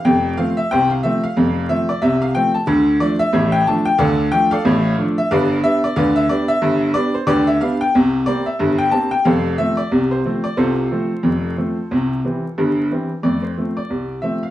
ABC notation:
X:1
M:2/4
L:1/16
Q:"Swing 16ths" 1/4=91
K:Flyd
V:1 name="Grand piano"
g2 f e [cg] f e f- | f2 e d e f g a | [K:F] z2 d e2 g a g | [Adf]2 g [Adf]4 e |
[=Bdf]2 e d [Bdf] e d e- | e2 d c [G=Bd] e f g | z2 d e2 g a g | [Acf]2 e d2 c2 d |
[FAc]8- | [FAc]4 z4 | d c2 d3 e f |]
V:2 name="Grand piano" clef=bass
[F,,,F,,]2 [F,A,C]2 [C,,C,]2 [F,A,C]2 | [F,,,F,,]2 [F,A,C]2 [C,,C,]2 [F,A,C]2 | [K:F] [D,,D,]2 [F,A,D]2 [A,,,A,,]2 [F,A,D]2 | [D,,D,]2 [F,A,D]2 [A,,,A,,]2 [F,A,D]2 |
[G,,,G,,]2 [G,=B,D]2 [D,,D,]2 [G,B,D]2 | [G,,,G,,]2 [G,=B,D]2 [D,,D,]2 [G,B,D]2 | [C,,C,]2 [G,B,C]2 [G,,,G,,]2 [G,B,C]2 | [F,,,F,,]2 [F,A,C]2 [C,,C,]2 [F,A,C]2 |
[C,,C,]2 [F,A,C]2 [F,,,F,,]2 [F,A,C]2 | [C,,C,]2 [E,G,C]2 [G,,,G,,]2 [E,G,C]2 | [F,,A,]2 [F,A,C]2 C,,2 [F,A,C]2 |]